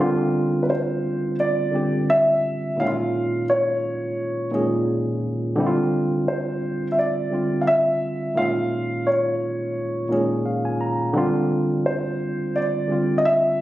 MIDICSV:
0, 0, Header, 1, 3, 480
1, 0, Start_track
1, 0, Tempo, 697674
1, 1912, Time_signature, 4, 2, 24, 8
1, 9366, End_track
2, 0, Start_track
2, 0, Title_t, "Grand piano"
2, 0, Program_c, 0, 0
2, 432, Note_on_c, 0, 71, 50
2, 474, Note_off_c, 0, 71, 0
2, 480, Note_on_c, 0, 72, 58
2, 929, Note_off_c, 0, 72, 0
2, 962, Note_on_c, 0, 74, 72
2, 1443, Note_on_c, 0, 76, 90
2, 1451, Note_off_c, 0, 74, 0
2, 1926, Note_on_c, 0, 77, 83
2, 1932, Note_off_c, 0, 76, 0
2, 2371, Note_off_c, 0, 77, 0
2, 2406, Note_on_c, 0, 73, 68
2, 3091, Note_off_c, 0, 73, 0
2, 4322, Note_on_c, 0, 72, 67
2, 4726, Note_off_c, 0, 72, 0
2, 4760, Note_on_c, 0, 76, 60
2, 4798, Note_off_c, 0, 76, 0
2, 4807, Note_on_c, 0, 74, 70
2, 5239, Note_on_c, 0, 77, 62
2, 5249, Note_off_c, 0, 74, 0
2, 5277, Note_off_c, 0, 77, 0
2, 5279, Note_on_c, 0, 76, 87
2, 5761, Note_on_c, 0, 77, 89
2, 5770, Note_off_c, 0, 76, 0
2, 6238, Note_on_c, 0, 73, 65
2, 6251, Note_off_c, 0, 77, 0
2, 6928, Note_off_c, 0, 73, 0
2, 8159, Note_on_c, 0, 72, 64
2, 8639, Note_on_c, 0, 74, 74
2, 8650, Note_off_c, 0, 72, 0
2, 9045, Note_off_c, 0, 74, 0
2, 9068, Note_on_c, 0, 75, 66
2, 9112, Note_off_c, 0, 75, 0
2, 9119, Note_on_c, 0, 76, 85
2, 9366, Note_off_c, 0, 76, 0
2, 9366, End_track
3, 0, Start_track
3, 0, Title_t, "Tine electric piano"
3, 0, Program_c, 1, 4
3, 0, Note_on_c, 1, 50, 104
3, 0, Note_on_c, 1, 55, 88
3, 0, Note_on_c, 1, 60, 95
3, 0, Note_on_c, 1, 61, 41
3, 0, Note_on_c, 1, 70, 45
3, 5, Note_on_c, 1, 65, 108
3, 112, Note_off_c, 1, 70, 0
3, 114, Note_off_c, 1, 61, 0
3, 131, Control_c, 1, 64, 127
3, 740, Note_off_c, 1, 50, 0
3, 745, Note_off_c, 1, 55, 0
3, 751, Note_off_c, 1, 60, 0
3, 754, Note_off_c, 1, 65, 0
3, 1179, Note_on_c, 1, 50, 61
3, 1190, Note_on_c, 1, 55, 57
3, 1198, Note_on_c, 1, 60, 59
3, 1207, Note_on_c, 1, 67, 69
3, 1759, Note_off_c, 1, 50, 0
3, 1764, Note_off_c, 1, 55, 0
3, 1768, Note_off_c, 1, 60, 0
3, 1773, Note_off_c, 1, 67, 0
3, 1902, Note_on_c, 1, 46, 76
3, 1908, Note_on_c, 1, 51, 77
3, 1917, Note_on_c, 1, 56, 73
3, 1921, Control_c, 1, 64, 0
3, 1925, Note_on_c, 1, 61, 75
3, 1931, Note_on_c, 1, 64, 71
3, 1971, Note_off_c, 1, 64, 0
3, 1977, Note_on_c, 1, 65, 96
3, 2023, Control_c, 1, 64, 127
3, 2663, Note_off_c, 1, 46, 0
3, 2666, Note_off_c, 1, 51, 0
3, 2671, Note_off_c, 1, 56, 0
3, 2674, Note_off_c, 1, 61, 0
3, 2701, Note_off_c, 1, 65, 0
3, 3101, Note_on_c, 1, 46, 81
3, 3107, Note_on_c, 1, 51, 64
3, 3118, Note_on_c, 1, 56, 65
3, 3124, Note_on_c, 1, 61, 63
3, 3130, Note_on_c, 1, 68, 85
3, 3680, Note_off_c, 1, 46, 0
3, 3683, Note_off_c, 1, 51, 0
3, 3688, Note_off_c, 1, 56, 0
3, 3691, Note_off_c, 1, 61, 0
3, 3694, Note_off_c, 1, 68, 0
3, 3823, Note_on_c, 1, 50, 97
3, 3833, Note_on_c, 1, 55, 85
3, 3841, Note_on_c, 1, 60, 95
3, 3842, Control_c, 1, 64, 0
3, 3854, Note_on_c, 1, 64, 82
3, 3892, Note_off_c, 1, 64, 0
3, 3897, Note_on_c, 1, 65, 108
3, 3980, Control_c, 1, 64, 127
3, 4583, Note_off_c, 1, 50, 0
3, 4588, Note_off_c, 1, 55, 0
3, 4593, Note_off_c, 1, 60, 0
3, 4621, Note_off_c, 1, 65, 0
3, 5023, Note_on_c, 1, 50, 57
3, 5033, Note_on_c, 1, 55, 54
3, 5042, Note_on_c, 1, 60, 57
3, 5051, Note_on_c, 1, 65, 68
3, 5600, Note_off_c, 1, 50, 0
3, 5606, Note_off_c, 1, 55, 0
3, 5610, Note_off_c, 1, 60, 0
3, 5615, Note_off_c, 1, 65, 0
3, 5743, Note_on_c, 1, 46, 76
3, 5749, Note_on_c, 1, 51, 72
3, 5756, Note_on_c, 1, 56, 76
3, 5762, Control_c, 1, 64, 0
3, 5763, Note_on_c, 1, 61, 70
3, 5770, Note_on_c, 1, 65, 84
3, 5867, Control_c, 1, 64, 127
3, 6504, Note_off_c, 1, 46, 0
3, 6506, Note_off_c, 1, 51, 0
3, 6510, Note_off_c, 1, 56, 0
3, 6514, Note_off_c, 1, 61, 0
3, 6517, Note_off_c, 1, 65, 0
3, 6940, Note_on_c, 1, 46, 71
3, 6948, Note_on_c, 1, 51, 63
3, 6957, Note_on_c, 1, 56, 70
3, 6963, Note_on_c, 1, 61, 72
3, 6972, Note_on_c, 1, 68, 81
3, 7194, Note_on_c, 1, 77, 57
3, 7316, Note_off_c, 1, 77, 0
3, 7328, Note_on_c, 1, 80, 56
3, 7427, Note_off_c, 1, 80, 0
3, 7435, Note_on_c, 1, 82, 60
3, 7519, Note_off_c, 1, 46, 0
3, 7523, Note_off_c, 1, 51, 0
3, 7528, Note_off_c, 1, 56, 0
3, 7531, Note_off_c, 1, 61, 0
3, 7535, Note_off_c, 1, 68, 0
3, 7657, Note_off_c, 1, 82, 0
3, 7660, Note_on_c, 1, 50, 99
3, 7669, Note_on_c, 1, 55, 86
3, 7680, Control_c, 1, 64, 0
3, 7680, Note_on_c, 1, 60, 87
3, 7689, Note_on_c, 1, 65, 109
3, 7783, Control_c, 1, 64, 127
3, 8422, Note_off_c, 1, 50, 0
3, 8427, Note_off_c, 1, 55, 0
3, 8432, Note_off_c, 1, 60, 0
3, 8437, Note_off_c, 1, 65, 0
3, 8859, Note_on_c, 1, 50, 56
3, 8868, Note_on_c, 1, 55, 56
3, 8879, Note_on_c, 1, 60, 55
3, 8888, Note_on_c, 1, 65, 69
3, 9366, Note_off_c, 1, 50, 0
3, 9366, Note_off_c, 1, 55, 0
3, 9366, Note_off_c, 1, 60, 0
3, 9366, Note_off_c, 1, 65, 0
3, 9366, End_track
0, 0, End_of_file